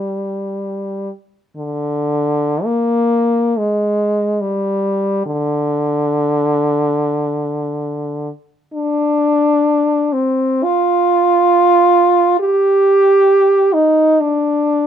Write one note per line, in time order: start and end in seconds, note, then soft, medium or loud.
0.00 1.10 G3 soft
1.57 2.66 D3 soft
2.64 3.60 A#3 medium
3.58 4.43 G#3 medium
4.41 5.26 G3 medium
5.26 8.29 D3 medium
8.73 10.14 D4 medium
10.13 10.65 C4 medium
10.64 12.39 F4 medium
12.40 13.75 G4 medium
13.73 14.22 D#4 medium
14.21 14.87 D4 medium